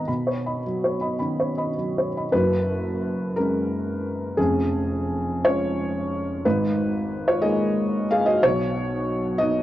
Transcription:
Already playing: B4 D#5 A#5
0.08 B2 B5
0.27 C#5
0.46 D#5 B5
0.66 F#3
0.84 C#5
1.01 D#5 B5
1.19 D#3 C#4 B5
1.40 C#5
1.58 D#5 B5
1.78 F#3
1.98 C#5
2.17 D#5 B5
2.33 F#1 F#2 F#4 B4
3.36 G#3 C#4 A#4
4.37 F1 F2 C#4 G#4
5.45 G#3 C#4 F4 C#5
6.45 G#1 G#2 D#4 B4
7.28 F4 C#5
7.42 G#3 A#3 D#4 G#4 D#5
8.11 G#4 F5
8.26 F#4 D#5
8.43 B1 B2 F#4 C#5
9.38 F#3 B3 D#4 F#4 D#5

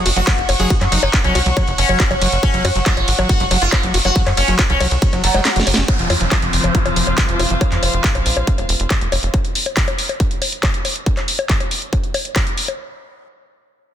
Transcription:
Already playing: D#5 F#5 C#6
0.06 F#1 F#4, open hi-hat, ride
0.16 F#1 F#3 F#4, closed hi-hat
0.27 F#3, kick, clap, closed hi-hat, ride, high bongo
0.38 F#1, closed hi-hat
0.49 F#1, open hi-hat, ride, high bongo
0.60 F#1 F#3 G#4, closed hi-hat
0.70 F#4, kick, closed hi-hat, ride
0.81 F#2 F#3, clap, closed hi-hat, high bongo
0.92 F#1 F#3 D#4, open hi-hat, ride
1.03 F#1, high bongo
1.14 kick, clap, closed hi-hat, ride
1.24 C2 F#3 C#4, closed hi-hat
1.35 C2 F#4, open hi-hat, ride, high bongo
1.46 C2 F#3, closed hi-hat
1.57 F#3, kick, closed hi-hat, ride, high bongo
1.68 F#1, closed hi-hat
1.78 F#1 C#4, open hi-hat, ride
1.89 F#1 F#3, closed hi-hat, high bongo
2.00 F#4, kick, clap, closed hi-hat, ride
2.11 F#1 F#3, closed hi-hat, high bongo
2.21 F#1 F#3, open hi-hat, ride
2.32 F#1, closed hi-hat
2.43 C#4, kick, closed hi-hat, ride, high bongo
2.54 F#1 F#3, closed hi-hat
2.65 F#2 F#4, open hi-hat, ride, high bongo
2.75 F#1 F#3, closed hi-hat
2.86 F#3 F4, kick, clap, closed hi-hat, ride
2.97 G#1, closed hi-hat, high bongo
3.08 G#1, open hi-hat, ride
3.19 G#1 F#3, closed hi-hat, high bongo
3.29 F#4, kick, closed hi-hat, ride
3.40 F#1 F#3, closed hi-hat
3.51 F#1 F#3, open hi-hat, ride, high bongo
3.62 F#1 F4, closed hi-hat
3.73 kick, clap, closed hi-hat, ride, high bongo
3.83 F#1 F#3, closed hi-hat
3.94 F#1 F#4, open hi-hat, ride
4.05 F#1 F#3 F#4, closed hi-hat, high bongo
4.16 F#3, kick, closed hi-hat, ride
4.27 F#2, clap, closed hi-hat, high bongo
4.37 F#1 C#4, open hi-hat, ride
4.48 F#1 F#3, closed hi-hat
4.59 F#4, kick, clap, closed hi-hat, ride, high bongo
4.70 C2 F#3 C#4, closed hi-hat
4.80 C2 F#3, open hi-hat, ride, high bongo
4.91 C2, closed hi-hat
5.02 kick, closed hi-hat, ride
5.13 F#1 F#3, closed hi-hat, high bongo
5.24 F#1 F#3, open hi-hat, ride
5.34 F#1 G#3, closed hi-hat, high bongo
5.45 C#4, snare, clap, closed hi-hat, ride
5.56 F#1 F#3, snare, closed hi-hat
5.67 F#1, open hi-hat, ride, high bongo
5.74 F#1 C#4, snare, closed hi-hat
5.88 F3 C4 F4, kick, closed hi-hat, downlifter, high bongo
5.99 F1 F3, closed hi-hat
6.10 F2 F4, open hi-hat, high bongo
6.21 F1 F3, closed hi-hat
6.32 F3 C5, kick, clap, closed hi-hat, high bongo
6.42 F#1, closed hi-hat
6.48 F5
6.53 F#1, open hi-hat
6.64 F#1 F3, closed hi-hat, high bongo
6.75 F4, kick, closed hi-hat
6.86 F1 F3, closed hi-hat, high bongo
6.96 F1 F3, open hi-hat
7.07 F1, closed hi-hat, high bongo
7.18 kick, clap, closed hi-hat
7.29 F1 F3, closed hi-hat
7.39 F1 F4, open hi-hat, high bongo
7.50 F1 F3, closed hi-hat
7.61 kick, closed hi-hat, high bongo
7.72 F2, clap, closed hi-hat
7.83 F1, open hi-hat, high bongo
7.93 F1, closed hi-hat
8.04 kick, clap, closed hi-hat
8.15 A#1, closed hi-hat, high bongo
8.26 A#1, open hi-hat
8.37 A#1, high bongo
8.47 kick, closed hi-hat
8.58 F1, closed hi-hat, high bongo
8.69 F1, open hi-hat
8.80 F1, closed hi-hat
8.91 kick, clap, closed hi-hat, high bongo
9.01 F1, closed hi-hat
9.12 F1, open hi-hat, high bongo
9.23 F1, closed hi-hat
9.34 kick, closed hi-hat, high bongo
9.45 closed hi-hat
9.55 open hi-hat
9.66 closed hi-hat, high bongo
9.77 kick, clap, closed hi-hat
9.88 closed hi-hat, high bongo
9.98 open hi-hat
10.09 closed hi-hat, high bongo
10.20 kick, closed hi-hat
10.31 closed hi-hat
10.42 open hi-hat, high bongo
10.52 closed hi-hat
10.63 kick, clap, closed hi-hat, high bongo
10.74 closed hi-hat
10.85 open hi-hat, high bongo
10.96 closed hi-hat
11.06 kick, closed hi-hat
11.17 clap, closed hi-hat, high bongo
11.28 open hi-hat
11.39 closed hi-hat, high bongo
11.50 kick, clap, closed hi-hat
11.60 closed hi-hat, high bongo
11.71 open hi-hat
11.82 closed hi-hat
11.93 kick, closed hi-hat, high bongo
12.04 closed hi-hat
12.14 open hi-hat, high bongo
12.25 closed hi-hat
12.36 kick, clap, closed hi-hat, high bongo
12.47 closed hi-hat
12.57 open hi-hat
12.68 closed hi-hat, high bongo

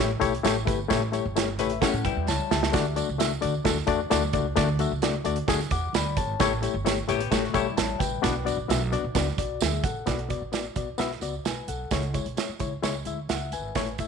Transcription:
Already playing: A3
0.00 A1 E4 G4 C#5
0.20 B1 A3 E4 G4 C#5, kick, closed hi-hat, tambourine
0.34 closed hi-hat
0.43 A1 A3 E4 G4 C#5, snare, closed hi-hat, tambourine, muted conga, high conga
0.56 muted conga, high conga
0.65 G1 A3 E4 G4 B4, kick, closed hi-hat, tambourine, low conga
0.89 A1 A3 E4 G4 C#5, kick, snare, closed hi-hat, tambourine, muted conga, low conga
1.02 muted conga
1.12 A3 E4 G4 C#5, closed hi-hat, tambourine, high conga
1.25 G1
1.36 A3 E4 G4 C#5, snare, closed hi-hat, tambourine
1.49 muted conga
1.59 A1 A3 E4 G4 B4 C#5 E5, closed hi-hat, tambourine, low conga
1.70 closed hi-hat
1.82 A3 C#4 E4 G4 A4 C#5 F#5, kick, snare, closed hi-hat, tambourine, muted conga, high conga
1.93 A2
2.05 F#2 G3 E4 B4 G5, kick, closed hi-hat, tambourine
2.16 E2
2.28 C#2 C#5 A5, snare, tambourine, muted conga, high conga
2.39 high conga
2.51 C#2 G4 E5 A5, snare, tambourine, low conga
2.63 snare
2.73 D2 A3 D4 F#4 D5, kick, snare, closed hi-hat, tambourine, muted conga, low conga
2.96 A3 D4 F#4 D5, closed hi-hat, tambourine, high conga
3.09 C#2
3.18 A3 D4 F#4 E5, snare, closed hi-hat, tambourine, muted conga
3.32 muted conga
3.41 D2 A3 D4 F#4 D5, closed hi-hat, tambourine, low conga
3.65 D2 A3 D4 F#4 A4, kick, snare, closed hi-hat, tambourine, muted conga, high conga
3.77 snare, muted conga
3.87 E2 A3 D4 F#4 D5, kick, closed hi-hat, tambourine
4.10 D2 A3 D4 F#4 D5, snare, closed hi-hat, tambourine, muted conga, high conga
4.23 muted conga, high conga
4.33 C#2 A3 D4 F#4 D5, kick, closed hi-hat, tambourine, low conga
4.56 D2 A3 D4 F#4 D5, kick, snare, closed hi-hat, tambourine, muted conga, low conga
4.79 A3 D4 F#4 E5, closed hi-hat, tambourine, high conga
4.91 C#2
5.02 A3 D4 F#4 D5, snare, closed hi-hat, tambourine
5.14 muted conga
5.25 D2 A3 D4 F#4 D5, closed hi-hat, tambourine, low conga
5.36 closed hi-hat
5.48 D2 A3 D4 F#4 G#4, kick, snare, closed hi-hat, tambourine, high conga
5.59 snare, muted conga
5.71 E2 F#5 D6, kick, closed hi-hat, tambourine
5.93 D2 D5 B5, snare, closed hi-hat, tambourine, high conga
6.05 high conga
6.17 G#1 C#5 A5, kick, closed hi-hat, tambourine, low conga
6.39 A1 A3 E4 G4 C#5, kick, snare, closed hi-hat, tambourine, low conga
6.62 A3 E4 G4 C#5, closed hi-hat, tambourine, high conga
6.74 G1
6.85 A3 E4 G4 C#5, snare, closed hi-hat, tambourine, muted conga
6.98 muted conga
7.08 A1 A3 B3 E4 G4 C#5, closed hi-hat, tambourine, low conga
7.20 closed hi-hat
7.31 A1 A3 E4 F#4 G4 C#5, kick, snare, closed hi-hat, tambourine, muted conga, high conga
7.43 snare, muted conga
7.54 B1 G3 A3 E4 G4 C#5, kick, closed hi-hat, tambourine
7.77 A1 C#5 A5, snare, closed hi-hat, tambourine, high conga
7.89 muted conga, high conga
7.99 A1 B4 G5, kick, closed hi-hat, tambourine, low conga
8.22 B1 B3 D4 F#4 D5, kick, snare, closed hi-hat, tambourine
8.45 B3 D4 F#4 D5, closed hi-hat, tambourine, high conga
8.57 A1
8.68 B1 B3 D4 F#4 E5, snare, closed hi-hat, tambourine
8.92 B3 D4 F#4 D5, closed hi-hat, tambourine, low conga
9.04 B1
9.15 C#2 B3 D4 F#4 D5, kick, snare, closed hi-hat, tambourine, muted conga, high conga
9.28 snare
9.38 B1 F#4 D5, kick, closed hi-hat, tambourine
9.61 D2 G#4 E5, snare, closed hi-hat, tambourine, muted conga, high conga
9.73 muted conga, high conga
9.84 A1 A4 F#5, kick, closed hi-hat, tambourine, low conga
10.06 B1 B3 F#4 D5, kick, snare, closed hi-hat, tambourine
10.19 closed hi-hat
10.29 B3 F#4 D5, kick, closed hi-hat, tambourine
10.41 A1
10.52 B3 F#4 D5, snare, closed hi-hat, tambourine
10.76 B1 B3 F#4 D5, kick, closed hi-hat, tambourine
10.98 B1 B3 F#4 E5, snare, closed hi-hat, tambourine
11.11 snare
11.21 C#2 B3 F#4 D5, closed hi-hat, tambourine
11.45 B1 B4 G#5, snare, closed hi-hat, tambourine
11.68 B1 A4 F#5, closed hi-hat, tambourine
11.91 C#2 G#3 E4 C#5, kick, snare, closed hi-hat, tambourine
12.03 closed hi-hat
12.14 G#3 E4 C#5, kick, closed hi-hat, tambourine
12.26 B1, closed hi-hat
12.37 G#3 E4 C#5, snare, closed hi-hat, tambourine
12.49 muted upright bass stroke
12.59 C#2 G#3 E4 C#5, kick, closed hi-hat, tambourine
12.83 C#2 G#3 E4 C#5, snare, closed hi-hat, tambourine
13.05 D2 G#3 E4 E5, closed hi-hat, tambourine
13.29 C#2 E5 F#5, snare, closed hi-hat, tambourine
13.52 G#1 B4 G#5, closed hi-hat, tambourine
13.75 A1 A3 E4 C#5, kick, snare, closed hi-hat, tambourine
13.86 closed hi-hat
13.98 A3 E4 E5, kick, closed hi-hat, tambourine

